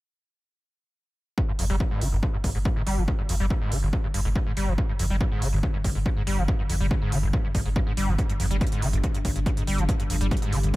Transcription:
1.38 G2 D3, kick
1.49 G2
1.59 G1 F2, open hi-hat
1.70 G1 G3
1.80 G3, kick
1.91 G#2
2.01 G1 D3, open hi-hat
2.12 G1
2.23 A#2, kick
2.34 G2
2.44 G1 G2, kick, open hi-hat
2.55 G1 G#2
2.65 G3, kick
2.76 G#2
2.86 G1 G3, open hi-hat
2.97 G1 F3
3.08 G2, kick
3.19 G2
3.29 G1 F2, open hi-hat
3.40 G1 G3
3.50 G3, kick
3.61 G#2
3.72 G1 D3, open hi-hat
3.83 G1
3.93 A#2, kick
4.04 G2
4.14 G1 G2, open hi-hat
4.25 G1 G#2
4.36 G3, kick
4.46 G#2
4.57 G1 G3, open hi-hat
4.68 G1 F3
4.78 G2, kick
4.89 G2
4.99 G1 F2, open hi-hat
5.10 G1 G3
5.21 G3, kick
5.32 G#2
5.42 G1 D3, open hi-hat
5.53 G1
5.63 A#2, kick
5.74 G2
5.84 G1 G2, kick, open hi-hat
5.95 G1 G#2
6.06 G3, kick
6.17 G#2
6.27 G1 G3, open hi-hat
6.38 G1 F3
6.48 G2, kick
6.59 G2
6.69 G1 F2, open hi-hat
6.80 G1 G3
6.91 G3, kick
7.02 G#2
7.12 G1 D3, open hi-hat
7.23 G1
7.33 A#2, kick
7.44 G2
7.55 G1 G2, kick, open hi-hat
7.66 G1 G#2
7.76 G3, kick
7.87 G#2
7.97 G1 G3, open hi-hat
8.08 G1 F3
8.18 G2, kick, closed hi-hat
8.29 G2, closed hi-hat
8.40 G1 F2, open hi-hat
8.51 G1 G3, closed hi-hat
8.61 G3, kick, closed hi-hat
8.67 closed hi-hat
8.72 G#2, closed hi-hat
8.82 G1 D3, open hi-hat
8.93 G1, closed hi-hat
9.04 A#2, kick, closed hi-hat
9.14 G2, closed hi-hat
9.25 G1 G2, kick, open hi-hat
9.36 G1 G2, closed hi-hat
9.46 G3, kick, closed hi-hat
9.57 G#2, closed hi-hat
9.67 G1 G3, open hi-hat
9.78 G1 F3, closed hi-hat
9.89 G2, kick, closed hi-hat
10.00 G2, closed hi-hat
10.10 G1 F2, open hi-hat
10.21 G1 G3, closed hi-hat
10.31 G3, kick, closed hi-hat
10.37 closed hi-hat
10.42 G#2, closed hi-hat
10.52 G1 D3, open hi-hat
10.63 G1, closed hi-hat

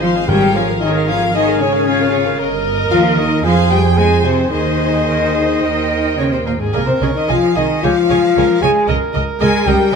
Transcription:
Already playing: G#1 C5
0.01 F3 D#4 F4 C5 F5 C6
0.15 G#4 D#5 G#5
0.27 G#2 G3 G4 G#4 A#4 C#5 G5 G#5
0.40 G#4 A#4 F5
0.54 F3 F4 G#4 C#5 F5 G#5
0.68 G#4 A#4 F5
0.81 D#3 D#4 G#4 C#5 D#5 G#5
0.94 G#4 A#4 F5
1.08 F3 F4 G#4 C#5 F5 G#5
1.22 G#4 A#4 F5
1.34 D#3 D#4 G#4 C#5 D#5 G#5
1.47 G#4 A#4 F5
1.60 C#3 C#4 G#4 C#5 G#5
1.73 G#4 A#4 F5
1.86 F4 G#4 C#5 G#5
2.00 G#4 A#4 F5
2.12 G#4 C#5 G#5
2.25 G#4 A#4 F5
2.38 G1 A#4 D#5
2.90 D#2 F3 F4 F5
3.17 D#3 D#4 D#5
3.43 F2 F3 F4 G#4 C5 F5 G#5
3.70 G3 G4 G5
3.97 G#3 G#4 C5 G#5
4.24 C3 C4 C5
4.50 D#2 D#3 D#4 G#4 C5 D#5 G#5
5.07 A#4
5.35 G#4
5.61 D#2 A#4 D#5 G5
6.18 C#3 C#4 C#5
6.32 C3 C4 C5
6.45 A#2 A#3 A#4 C5
6.58 G#2 G#3 G#4
6.73 C2 A#2 A#3 G#4 A#4 D#5 G#5
6.87 C3 C4 C5
7.01 C2 C#3 C#4 G#4 C#5 D#5 G#5
7.15 D#3 D#4 D#5
7.28 C2 F3 F4 G#4 D#5 F5 G#5
7.56 C2 D#3 D#4 G#4 D#5 G#5
7.82 C#2 F3 F4 G4 G#4 C#5 F5 G#5
8.10 C#2 G#4 C#5 G#5
8.36 C#2 G#4 A#4 C#5 G#5
8.61 C#2 G#3 G#4 C#5 G#5
8.88 C#2 A#4 D#5
9.14 C#2 A#4 D#5
9.40 C#2 G#3 G#4 A#4 D#5 G#5
9.66 C#2 G3 G4 A#4 D#5 G5
9.92 C2 G#3

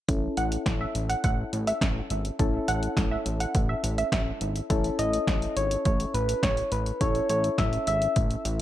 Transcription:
0.08 A1 C#4 E4 A4, kick, closed hi-hat
0.37 A1 F#5, closed hi-hat
0.52 closed hi-hat
0.66 A1, kick, snare, closed hi-hat
0.81 E5
0.95 A1, closed hi-hat
1.09 F#5, closed hi-hat
1.24 A1 F#5, kick, closed hi-hat
1.53 A1, closed hi-hat
1.67 E5, closed hi-hat
1.81 A1, kick, snare, closed hi-hat
2.10 G#1, closed hi-hat
2.25 closed hi-hat
2.39 A1 C#4 E4 A4, kick, closed hi-hat
2.68 A1 F#5, closed hi-hat
2.83 closed hi-hat
2.97 A1, kick, snare, closed hi-hat
3.11 E5
3.26 A1, closed hi-hat
3.40 F#5, closed hi-hat
3.55 A1, kick, closed hi-hat
3.69 E5
3.84 A1, closed hi-hat
3.98 E5, closed hi-hat
4.12 A1 E5, kick, snare, closed hi-hat
4.41 G#1, closed hi-hat
4.56 closed hi-hat
4.70 A1 C#4 E4 A4, kick, closed hi-hat
4.84 closed hi-hat
4.99 A1 D#5, closed hi-hat
5.13 closed hi-hat
5.27 A1, kick, snare, closed hi-hat
5.42 closed hi-hat
5.57 G#1 C#5, closed hi-hat
5.71 closed hi-hat
5.85 A1 C#5, kick, closed hi-hat
6.00 closed hi-hat
6.14 A1 B4, closed hi-hat
6.29 closed hi-hat
6.43 A1 C#5, kick, snare, closed hi-hat
6.57 closed hi-hat
6.72 A1 B4, closed hi-hat
6.86 closed hi-hat
7.01 A1 C#4 E4 A4 C#5, kick, closed hi-hat
7.15 closed hi-hat
7.29 A1 C#5, closed hi-hat
7.44 closed hi-hat
7.58 A1 E5, kick, snare, closed hi-hat
7.73 closed hi-hat
7.87 G#1 E5, closed hi-hat
8.02 closed hi-hat
8.16 A1, kick, closed hi-hat
8.31 closed hi-hat
8.45 A1, closed hi-hat

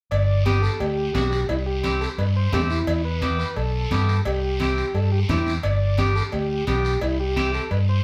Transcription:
0.11 G1 D5, cowbell, high conga, long guiro
0.46 B3 D4 G4, cowbell, high conga, short guiro
0.62 A4, short guiro
0.80 D2 G4, cowbell, high conga, long guiro
1.14 B1 B3 D4 F#4 G4, cowbell, high conga, low timbale, short guiro
1.32 short guiro
1.49 C2 E4, cowbell, high conga, long guiro
1.66 G4
1.83 C4 E4 G4, cowbell, high conga, short guiro
2.01 A4, short guiro
2.18 G2 B4, cowbell, high conga, long guiro
2.36 C5
2.52 E2 C4 E4 G4, cowbell, high conga, low conga, low timbale, short guiro
2.70 E4, short guiro
2.87 E2, cowbell, high conga, long guiro
3.05 B4
3.22 B3 E4 G4, cowbell, high conga, short guiro
3.39 B4, short guiro
3.56 B1 A4, cowbell, high conga, long guiro
3.91 G2 B3 E4 G4, cowbell, high conga, short guiro
4.09 short guiro
4.25 C2 G4, cowbell, high conga, long guiro
4.60 C4 E4 G4, cowbell, high conga, short guiro
4.78 short guiro
4.94 G2 A4, cowbell, high conga, long guiro
5.12 G4
5.29 E2 C4 E4 G4, cowbell, high conga, low conga, short guiro
5.47 short guiro
5.63 G1 D5, cowbell, high conga, long guiro
5.98 B3 D4 G4, cowbell, high conga, short guiro
6.16 A4, short guiro
6.32 D2 G4, cowbell, high conga, long guiro
6.67 B1 B3 D4 G4, cowbell, high conga, short guiro
6.85 short guiro
7.01 C2 E4, cowbell, high conga, long guiro
7.20 G4
7.36 C4 E4 G4, cowbell, high conga, short guiro
7.54 A4, short guiro
7.71 G2 B4, cowbell, high conga, long guiro
7.89 C5

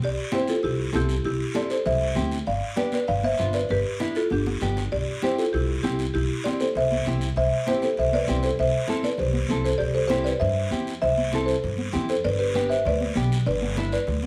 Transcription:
0.02 C2 G4 D5, high conga, long guiro
0.32 C4 E4 G4 C5, high conga, short guiro
0.48 F4 A4, high conga, short guiro
0.63 C2 E4 G4, high conga, long guiro
0.92 C2 C4 E4 G4 A4, high conga, short guiro
1.09 short guiro
1.24 C2 E4 G4, high conga, long guiro
1.54 C4 E4 G4 A4 D5, high conga, short guiro
1.70 A4 C5, short guiro
1.86 C2 C5 E5, high conga, low conga, long guiro
2.15 D2 C4 E4 G4, high conga, low conga, short guiro
2.32 short guiro
2.47 G1 D5 F5, high conga, long guiro
2.76 B3 D4 G4 B4 D5, high conga, short guiro
2.92 B4 D5, high conga, short guiro
3.07 G1 D5 F5, high conga, long guiro
3.23 C5 E5, high conga
3.38 G1 B3 D4 F4, high conga, short guiro
3.53 B4 D5, short guiro
3.69 G1 G4 B4, high conga, long guiro
3.99 B3 D4 E4, high conga, short guiro
4.15 F4 A4, short guiro
4.30 G1 D4 G4, high conga, long guiro
4.47 high conga
4.61 G1 B3 D4 G4, low conga, short guiro
4.77 low conga, short guiro
4.92 C2 G4 D5, high conga, long guiro
5.22 C4 E4 G4 C5, high conga, short guiro
5.38 F4 A4, short guiro
5.53 C2 E4 G4, high conga, long guiro
5.83 C2 C4 E4 G4, high conga, short guiro
5.99 short guiro
6.14 C2 E4 G4, high conga, long guiro
6.44 C4 E4 G4 D5, high conga, short guiro
6.60 A4 C5, high conga, short guiro
6.75 C2 C5 E5, high conga, long guiro
6.92 high conga
7.05 C2 C4 E4 G4, high conga, low conga, short guiro
7.21 short guiro
7.36 C2 C5 E5, high conga, long guiro
7.66 C4 E4 G4 C5, high conga, short guiro
7.82 A4 C5, high conga, short guiro
7.97 C2 C5 E5, high conga, long guiro
8.12 B4 D5, high conga
8.27 C2 C4 E4 G4, high conga, short guiro
8.43 A4 C5, short guiro
8.58 C2 C5 E5, high conga, long guiro
8.88 C4 E4 A4, high conga, short guiro
9.03 B4 D5, high conga, short guiro
9.18 C2 G4 C5, high conga, low conga, long guiro
9.33 high conga
9.48 C2 C4 E4 A4, high conga, low conga, short guiro
9.65 A4 C5, short guiro
9.78 C2 G4 D5, high conga, long guiro
9.95 A4 C5
10.07 C4 E4 G4 C5, high conga, short guiro
10.24 B4 D5, short guiro
10.40 G2 C5 E5, high conga, low conga, long guiro
10.71 E2 C4 E4 G4, high conga, short guiro
10.87 short guiro
11.02 C2 C5 E5, high conga, low conga, long guiro
11.17 high conga
11.32 C4 E4 A4, high conga, short guiro
11.46 A4 C5, short guiro
11.63 G2, high conga, low conga, long guiro
11.78 high conga
11.92 E2 C4 E4 G4, high conga, low conga, short guiro
12.09 A4 C5, short guiro
12.24 G1 B4 D5, high conga, long guiro
12.39 G4 B4
12.54 B3 D4 G4 B4, high conga, short guiro
12.69 C5 E5, short guiro
12.85 D2 B4 D5, high conga, low conga, long guiro
13.01 high conga
13.15 B1 B3 D4 G4, high conga, short guiro
13.32 short guiro
13.46 G1 B4 D5, high conga, low conga, long guiro
13.62 high conga
13.76 B3 D4 E4, high conga, short guiro
13.92 B4 D5, short guiro
14.07 D2, high conga, low conga, long guiro
14.23 high conga

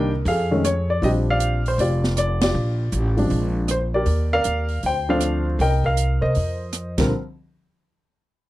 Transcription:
Already playing: C2 D#3 G3 A#3 D4 G4 A#4 D#5 G5
0.25 F2 G#4 A4 F5, open hi-hat
0.51 D#3 G#3 A3 C#4
0.65 C#5, cross-stick, closed hi-hat
0.90 D5
1.02 A#1 F3 G3 C4 D4 G4 D#5, open hi-hat
1.30 D5 F5
1.40 closed hi-hat
1.66 C5, open hi-hat
1.78 F1 F4 G4 D5, open hi-hat
2.04 snare
2.17 D5, cross-stick, closed hi-hat
2.41 F4 G4 D5, snare, ride
2.54 A#1
2.92 A1, closed hi-hat
3.17 F3 G#3 C4 D4, open hi-hat
3.30 A#1, open hi-hat
3.68 C5, cross-stick, closed hi-hat
3.94 G4 A#4 D5
4.06 D#2, open hi-hat
4.33 A#4 D5 F5
4.44 D#2, closed hi-hat
4.68 open hi-hat
4.83 D2 C5 G5, open hi-hat
5.09 F3 A3 C4 D4 A4 C5 F5
5.20 cross-stick, closed hi-hat
5.59 C2 A#4 D#5 G5, open hi-hat
5.84 A#4 F5, kick
5.97 closed hi-hat
6.21 C3 A#4 C5 D#5
6.35 F2, open hi-hat
6.73 cross-stick, closed hi-hat
6.98 A#1 D3 F3 G3 C4 A#4, kick, snare, crash

